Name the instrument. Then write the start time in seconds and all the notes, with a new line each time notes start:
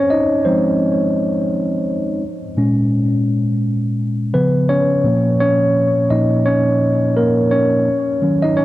tine electric piano
Already playing: C4 C#4 C5 C#5
0.10 D#4 D#5
0.45 F3 G#3 C4 D#4 C5
2.57 A#2 G#3 C#4
4.33 C#3 F3 B3 B4
4.69 C#4 C#5
5.04 A#2 F3 A#3
5.40 C#4 C#5
6.10 A#2 F3 A#3 D#4 D#5
6.46 C#4 C#5
7.17 A#3 A#4
7.51 C#4 C#5
8.22 D#3 F#3 C#4
8.42 D#4 D#5
8.57 C#4 C#5